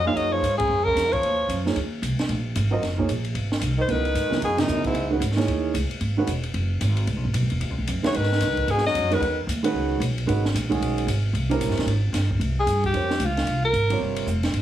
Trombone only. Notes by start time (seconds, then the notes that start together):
0.05 G#3
0.16 F#3
0.31 F3
0.58 C#3
0.84 C#3
1.10 F3
3.78 D#3
3.89 D#3
4.43 B2
4.59 F#2
4.85 G#2
8.05 E3
8.16 D#3
8.71 B2
8.87 F#3
9.13 D#3